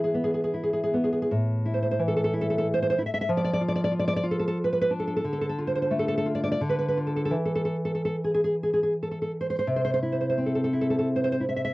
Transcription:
Already playing: E3 B3 E4
0.04 G#4
0.14 B3
0.24 G#4
0.34 G#4
0.44 G#4
0.54 E4
0.63 G#4
0.73 G#4
0.84 G#4
0.94 B3
1.04 G#4
1.13 G#4
1.22 G#4
1.31 A2
1.65 E4
1.74 C5
1.83 C5
1.91 C5
1.99 E3
2.08 A4
2.17 A4
2.24 A4
2.33 E4
2.41 A4
2.50 A4
2.58 A4
2.74 C5
2.82 C5
2.90 C5
2.98 E4
3.06 E5
3.14 E5
3.21 E5
3.29 F3
3.37 D5
3.44 D5
3.53 D5
3.61 F4
3.68 D5
3.76 D5
3.84 D5
3.91 F4
3.99 D5
4.08 D5
4.16 D5
4.23 F4
4.31 A4
4.39 A4
4.48 A4
4.64 B4
4.73 B4
4.81 B4
4.90 D4
5.00 A4
5.07 A4
5.17 A4
5.24 D3
5.33 A4
5.41 A4
5.49 A4
5.58 F4
5.67 C5
5.75 C5
5.82 C5
5.91 A3
5.99 A4
6.08 A4
6.18 A4
6.26 F4
6.35 D5
6.44 D5
6.52 D5
6.61 D3
6.69 B4
6.79 B4
6.88 B4
6.97 F4
7.07 A4
7.16 A4
7.25 A4
7.31 E3
7.45 A4
7.55 A4
7.65 A4
7.85 A4
7.95 A4
8.05 A4
8.24 G#4
8.34 G#4
8.44 G#4
8.63 G#4
8.73 G#4
8.83 G#4
9.03 A4
9.11 A4
9.22 A4
9.41 C5
9.50 C5
9.59 C5
9.67 C3
9.76 C5
9.85 C5
9.94 C5
10.03 E4
10.12 C5
10.21 C5
10.30 C5
10.38 C4
10.46 A4
10.55 A4
10.64 A4
10.73 E4
10.81 A4
10.90 A4
10.99 A4
11.16 C5
11.24 C5
11.32 C5
11.40 E4
11.49 E5
11.56 E5
11.65 E5

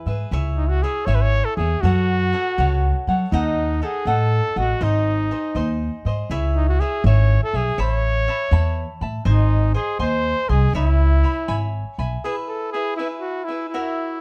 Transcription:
0.06 G#2 G#4 B4 E5
0.31 C#2 E4 G#4 C#5 E5
0.57 D#4
0.69 F#4
0.83 E4 G#4 C#5 E5
1.06 G#1 E4 G#4 C#5 E5
1.15 B4
1.21 C#5
1.45 A4
1.57 E2 G#4 C#5 E5
1.61 G#4
1.81 F#2 F#4 A4 C#5
1.85 F#5
2.33 F#4 A4 C#5 F#5
2.58 C#2 F#4 A4 C#5 F#5
3.07 F#3 A4 C#5 F#5
3.32 D#2 D#4 A4 D#5 F#5
3.82 D#4 G#4 A4 D#5 F#5
4.05 A2 D#4 A4 D#5 F#5
4.56 A1 F#4 A4 D#5 F#5
4.81 G#1 D#4 G#4 C5 D#5
5.31 D#4 G#4 C5 D#5
5.55 D#2 D#4 G#4 C5 D#5
6.05 G#2 G#4 C5 D#5
6.30 C#2 E4 G#4 C#5 E5
6.56 D#4
6.69 F#4
6.80 E4 G#4 C#5 E5
7.04 G#1 E4 G#4 C#5 E5
7.44 A4
7.53 B1 G#4 C#5 E5
7.78 A1 C#5 E5 A5 B5
8.28 C#5 E5 A5 B5
8.51 E2 C#5 E5 A5 B5
9.01 A2 E5 A5 B5
9.25 G#1 D#4 C5 D#5 G#5 C6
9.74 G#4 C5 D#5 G#5 C6
9.99 D#2 C5 D#5 G#5 C6
10.49 C2 G#4 D#5 G#5 C6
10.73 C#2 E4 C#5 E5 G#5 B5
11.23 C#5 E5 G#5 B5
11.48 G#1 C#5 E5 G#5 B5
11.98 B1 E5 G#5 B5
12.24 E4 G#4 B4 E5
12.49 A4
12.72 E4 G#4 B4 E5
12.97 E4 G#4 B4 E5
13.20 F#4
13.45 E4 E5
13.50 G#4 B4
13.69 E4
13.74 F#4 A#4 C#5 E5

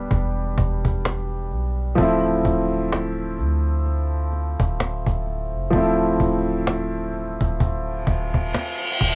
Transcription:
Already playing: G3 B3 D4 G4
0.11 E1, cajon bass
0.58 E1, cajon bass
0.85 cajon bass
1.05 cajon slap
1.51 B1, cajon slap
1.95 D1 F3 A3, cajon bass
2.00 C4 E4
2.45 D1, cajon bass
2.93 cajon slap
3.38 D2, cajon slap
3.86 cajon slap
4.32 cajon slap
4.60 D1, cajon bass
4.80 cajon slap
5.06 D1, cajon bass
5.26 cajon slap
5.54 F1
5.70 D1 F3 A3, cajon bass
5.75 C4 E4
6.20 D1, cajon bass
6.47 cajon slap
6.67 cajon slap
7.13 cajon slap
7.41 D1, cajon bass
7.60 cajon bass, reverse cymbal
8.07 D1, cajon bass
8.34 cajon bass, cajon slap
8.55 cajon slap
9.01 D1, cajon bass

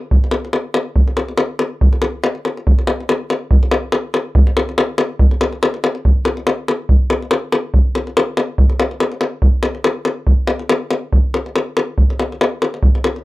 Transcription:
0.11 davul low
0.24 davul high
0.31 davul high
0.45 davul high
0.53 davul high
0.74 davul high
0.96 davul low
1.08 davul high
1.17 davul high
1.29 davul high
1.38 davul high
1.59 davul high
1.81 davul low
1.93 davul high
2.02 davul high
2.24 davul high
2.35 davul high
2.45 davul high
2.57 davul high
2.67 davul low
2.79 davul high
2.87 davul high
3.00 davul high
3.09 davul high
3.30 davul high
3.51 davul low
3.63 davul high
3.71 davul high
3.92 davul high
4.14 davul high
4.35 davul low
4.47 davul high
4.57 davul high
4.69 davul high
4.78 davul high
4.98 davul high
5.19 davul low
5.31 davul high
5.41 davul high
5.53 davul high
5.63 davul high
5.74 davul high
5.84 davul high
5.95 davul high
6.05 davul low
6.25 davul high
6.37 davul high
6.47 davul high
6.68 davul high
6.89 davul low
7.10 davul high
7.22 davul high
7.31 davul high
7.52 davul high
7.74 davul low
7.95 davul high
8.07 davul high
8.17 davul high
8.37 davul high
8.58 davul low
8.70 davul high
8.80 davul high
8.91 davul high
9.00 davul high
9.12 davul high
9.21 davul high
9.42 davul low
9.63 davul high
9.75 davul high
9.84 davul high
10.05 davul high
10.27 davul low
10.47 davul high
10.59 davul high
10.69 davul high
10.91 davul high
11.12 davul low
11.34 davul high
11.46 davul high
11.56 davul high
11.77 davul high
11.98 davul low
12.10 davul high
12.20 davul high
12.32 davul high
12.41 davul high
12.62 davul high
12.74 davul high
12.83 davul low
12.95 davul high
13.04 davul high
13.16 davul high

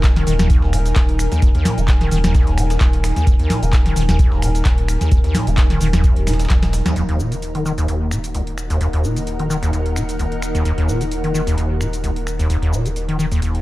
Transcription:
Already playing: D#1 D#4 A#4 F#5 G#5
0.04 kick, snare, clap, closed hi-hat, shaker
0.16 D#3, snare, closed hi-hat
0.27 D#1 D#3, closed hi-hat, open hi-hat, shaker
0.39 D#2, snare, closed hi-hat, shaker
0.50 D#2, kick, closed hi-hat, shaker
0.62 D#1, snare
0.73 A#2, finger snap, closed hi-hat, open hi-hat, shaker
0.85 snare, closed hi-hat, shaker
0.96 D#1 C#2, kick, snare, clap, closed hi-hat, shaker
1.09 closed hi-hat
1.19 finger snap, closed hi-hat, open hi-hat, shaker
1.32 D#2, snare, closed hi-hat, shaker
1.42 D#1 D#2, kick, closed hi-hat, shaker
1.55 D#2, snare, closed hi-hat
1.65 A#2, snare, closed hi-hat, open hi-hat, shaker
1.78 D#1 D#3, closed hi-hat, shaker
1.88 kick, snare, clap, closed hi-hat, shaker
2.01 D#3, snare, closed hi-hat
2.11 D#1 D#3, closed hi-hat, open hi-hat, shaker
2.24 D#2, snare, closed hi-hat, shaker
2.35 D#2, kick, snare, closed hi-hat, shaker
2.47 D#1, snare, closed hi-hat
2.58 A#2, finger snap, closed hi-hat, open hi-hat, shaker
2.70 snare, closed hi-hat, shaker
2.81 D#1 C#2, kick, clap, closed hi-hat, shaker
2.93 closed hi-hat
3.04 finger snap, snare, closed hi-hat, open hi-hat, shaker
3.16 D#2, snare, closed hi-hat, shaker
3.27 D#1 D#2, kick, closed hi-hat, shaker
3.39 D#2, closed hi-hat
3.50 A#2, snare, closed hi-hat, open hi-hat, shaker
3.62 D#1 D#3, closed hi-hat, shaker
3.73 kick, snare, clap, closed hi-hat, shaker
3.86 D#3, snare, closed hi-hat
3.96 D#1 D#3, closed hi-hat, open hi-hat, shaker
4.09 D#2, snare, closed hi-hat, shaker
4.19 kick, closed hi-hat, shaker
4.32 D#1, snare
4.42 A#2, finger snap, closed hi-hat, open hi-hat, shaker
4.55 snare, closed hi-hat, shaker
4.65 D#1 C#2, kick, snare, clap, closed hi-hat, shaker
4.78 closed hi-hat
4.88 finger snap, closed hi-hat, open hi-hat, shaker
5.01 D#2, snare, closed hi-hat, shaker
5.12 D#1 D#2, kick, closed hi-hat, shaker
5.24 D#2, snare, closed hi-hat
5.35 A#2, snare, closed hi-hat, open hi-hat, shaker
5.47 D#1 D#3, closed hi-hat, shaker
5.57 kick, snare, clap, closed hi-hat, shaker
5.70 D#3, snare, closed hi-hat
5.81 D#1 D#3, closed hi-hat, open hi-hat, shaker
5.93 D#2, snare, closed hi-hat, shaker
6.04 D#2, kick, closed hi-hat, shaker
6.16 D#1, closed hi-hat
6.27 A#2, finger snap, snare, closed hi-hat, open hi-hat, shaker
6.33 snare, closed hi-hat
6.39 snare, closed hi-hat, shaker
6.45 snare, closed hi-hat
6.50 D#1 C#2, kick, snare, clap, closed hi-hat, shaker
6.63 snare, closed hi-hat
6.73 snare, closed hi-hat, open hi-hat, shaker
6.86 D#2, snare, closed hi-hat, shaker
6.96 D#1 D#2 D#4 A#4 F#5, closed hi-hat, shaker
7.09 D#2 F#5, closed hi-hat
7.19 A#2 A#4, shaker
7.32 D#3, closed hi-hat, shaker
7.42 closed hi-hat, shaker
7.55 D#3, closed hi-hat
7.66 D#3, shaker
7.78 D#2, closed hi-hat, shaker
7.88 D#2, closed hi-hat, shaker
8.11 A#2, finger snap, shaker
8.24 closed hi-hat, shaker
8.35 C#2, closed hi-hat, shaker
8.47 closed hi-hat
8.58 finger snap, shaker
8.70 D#2, closed hi-hat, shaker
8.81 D#2, closed hi-hat, shaker
8.93 D#2, closed hi-hat
9.04 A#2, shaker
9.16 D#3, closed hi-hat, shaker
9.27 closed hi-hat, shaker
9.39 D#3, closed hi-hat
9.50 D#3, shaker
9.63 D#2, closed hi-hat, shaker
9.73 D#2, closed hi-hat, shaker
9.86 closed hi-hat
9.96 A#2, finger snap, shaker
10.09 closed hi-hat, shaker
10.19 C#2, closed hi-hat, shaker
10.32 closed hi-hat
10.42 finger snap, shaker
10.55 D#2, closed hi-hat, shaker
10.65 D#2, closed hi-hat, shaker
10.78 D#2, closed hi-hat
10.88 A#2, shaker
11.01 D#3, closed hi-hat, shaker
11.11 closed hi-hat, shaker
11.24 D#3, closed hi-hat
11.34 D#3, shaker
11.47 D#2, closed hi-hat, shaker
11.57 D#2, closed hi-hat, shaker
11.81 A#2, finger snap, shaker
11.93 closed hi-hat, shaker
12.04 C#2, closed hi-hat, shaker
12.16 closed hi-hat
12.27 finger snap, shaker
12.39 D#2, closed hi-hat, shaker
12.50 D#2, closed hi-hat, shaker
12.62 D#2, closed hi-hat
12.73 A#2, shaker
12.85 D#3, closed hi-hat, shaker
12.96 closed hi-hat, shaker
13.08 D#3, closed hi-hat
13.19 D#3, shaker
13.32 D#2, closed hi-hat, shaker
13.42 D#2, closed hi-hat, shaker
13.55 closed hi-hat

